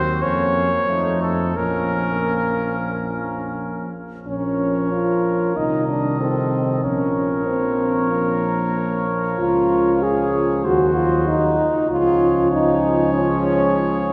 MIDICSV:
0, 0, Header, 1, 6, 480
1, 0, Start_track
1, 0, Key_signature, -5, "minor"
1, 0, Tempo, 671892
1, 1117, Time_signature, 4, 2, 24, 8
1, 3050, Tempo, 647948
1, 4010, Tempo, 636267
1, 7850, Tempo, 621762
1, 10532, End_track
2, 0, Start_track
2, 0, Title_t, "Trumpet"
2, 0, Program_c, 0, 56
2, 0, Note_on_c, 0, 72, 72
2, 158, Note_on_c, 0, 73, 72
2, 168, Note_off_c, 0, 72, 0
2, 870, Note_off_c, 0, 73, 0
2, 873, Note_on_c, 0, 69, 55
2, 1119, Note_on_c, 0, 70, 61
2, 1130, Note_off_c, 0, 69, 0
2, 2814, Note_off_c, 0, 70, 0
2, 3050, Note_on_c, 0, 73, 47
2, 4011, Note_on_c, 0, 75, 46
2, 4022, Note_off_c, 0, 73, 0
2, 4965, Note_off_c, 0, 75, 0
2, 4969, Note_on_c, 0, 73, 53
2, 7847, Note_on_c, 0, 72, 55
2, 7859, Note_off_c, 0, 73, 0
2, 8601, Note_off_c, 0, 72, 0
2, 8811, Note_on_c, 0, 73, 64
2, 10532, Note_off_c, 0, 73, 0
2, 10532, End_track
3, 0, Start_track
3, 0, Title_t, "Trumpet"
3, 0, Program_c, 1, 56
3, 0, Note_on_c, 1, 60, 56
3, 163, Note_on_c, 1, 61, 51
3, 174, Note_off_c, 1, 60, 0
3, 508, Note_off_c, 1, 61, 0
3, 630, Note_on_c, 1, 63, 46
3, 1106, Note_off_c, 1, 63, 0
3, 1121, Note_on_c, 1, 61, 47
3, 2786, Note_off_c, 1, 61, 0
3, 3056, Note_on_c, 1, 70, 45
3, 4493, Note_on_c, 1, 69, 46
3, 4505, Note_off_c, 1, 70, 0
3, 4966, Note_off_c, 1, 69, 0
3, 4971, Note_on_c, 1, 70, 55
3, 7379, Note_on_c, 1, 68, 51
3, 7391, Note_off_c, 1, 70, 0
3, 7842, Note_off_c, 1, 68, 0
3, 7847, Note_on_c, 1, 66, 60
3, 8586, Note_off_c, 1, 66, 0
3, 8816, Note_on_c, 1, 68, 66
3, 10532, Note_off_c, 1, 68, 0
3, 10532, End_track
4, 0, Start_track
4, 0, Title_t, "French horn"
4, 0, Program_c, 2, 60
4, 163, Note_on_c, 2, 58, 49
4, 638, Note_on_c, 2, 57, 47
4, 649, Note_off_c, 2, 58, 0
4, 1112, Note_off_c, 2, 57, 0
4, 1117, Note_on_c, 2, 58, 47
4, 2784, Note_off_c, 2, 58, 0
4, 3049, Note_on_c, 2, 61, 66
4, 3503, Note_off_c, 2, 61, 0
4, 3534, Note_on_c, 2, 65, 69
4, 4001, Note_off_c, 2, 65, 0
4, 4011, Note_on_c, 2, 63, 64
4, 4246, Note_off_c, 2, 63, 0
4, 4250, Note_on_c, 2, 62, 58
4, 4485, Note_off_c, 2, 62, 0
4, 4489, Note_on_c, 2, 60, 64
4, 4968, Note_on_c, 2, 61, 67
4, 4979, Note_off_c, 2, 60, 0
4, 5437, Note_off_c, 2, 61, 0
4, 5442, Note_on_c, 2, 60, 70
4, 5919, Note_off_c, 2, 60, 0
4, 5933, Note_on_c, 2, 58, 64
4, 6642, Note_off_c, 2, 58, 0
4, 6893, Note_on_c, 2, 65, 80
4, 7371, Note_on_c, 2, 68, 82
4, 7382, Note_off_c, 2, 65, 0
4, 7849, Note_off_c, 2, 68, 0
4, 7852, Note_on_c, 2, 66, 83
4, 8090, Note_on_c, 2, 65, 74
4, 8102, Note_off_c, 2, 66, 0
4, 8326, Note_off_c, 2, 65, 0
4, 8330, Note_on_c, 2, 63, 84
4, 8805, Note_off_c, 2, 63, 0
4, 8816, Note_on_c, 2, 65, 86
4, 9285, Note_off_c, 2, 65, 0
4, 9291, Note_on_c, 2, 63, 81
4, 9761, Note_off_c, 2, 63, 0
4, 9769, Note_on_c, 2, 61, 86
4, 10476, Note_off_c, 2, 61, 0
4, 10532, End_track
5, 0, Start_track
5, 0, Title_t, "Trombone"
5, 0, Program_c, 3, 57
5, 0, Note_on_c, 3, 54, 59
5, 162, Note_on_c, 3, 53, 45
5, 173, Note_off_c, 3, 54, 0
5, 506, Note_off_c, 3, 53, 0
5, 627, Note_on_c, 3, 53, 50
5, 1104, Note_off_c, 3, 53, 0
5, 1112, Note_on_c, 3, 53, 46
5, 2782, Note_off_c, 3, 53, 0
5, 3049, Note_on_c, 3, 53, 49
5, 4009, Note_on_c, 3, 51, 46
5, 4020, Note_off_c, 3, 53, 0
5, 4964, Note_on_c, 3, 53, 48
5, 4975, Note_off_c, 3, 51, 0
5, 7850, Note_on_c, 3, 54, 60
5, 7862, Note_off_c, 3, 53, 0
5, 8603, Note_off_c, 3, 54, 0
5, 8815, Note_on_c, 3, 53, 68
5, 10532, Note_off_c, 3, 53, 0
5, 10532, End_track
6, 0, Start_track
6, 0, Title_t, "Bass trombone"
6, 0, Program_c, 4, 57
6, 0, Note_on_c, 4, 39, 53
6, 165, Note_on_c, 4, 41, 45
6, 176, Note_off_c, 4, 39, 0
6, 509, Note_off_c, 4, 41, 0
6, 630, Note_on_c, 4, 41, 46
6, 1117, Note_on_c, 4, 34, 45
6, 1128, Note_off_c, 4, 41, 0
6, 2813, Note_off_c, 4, 34, 0
6, 3051, Note_on_c, 4, 34, 46
6, 3981, Note_off_c, 4, 34, 0
6, 4011, Note_on_c, 4, 36, 45
6, 4951, Note_off_c, 4, 36, 0
6, 4972, Note_on_c, 4, 34, 48
6, 6867, Note_off_c, 4, 34, 0
6, 6894, Note_on_c, 4, 37, 54
6, 7850, Note_on_c, 4, 39, 52
6, 7861, Note_off_c, 4, 37, 0
6, 8603, Note_off_c, 4, 39, 0
6, 8813, Note_on_c, 4, 37, 61
6, 10532, Note_off_c, 4, 37, 0
6, 10532, End_track
0, 0, End_of_file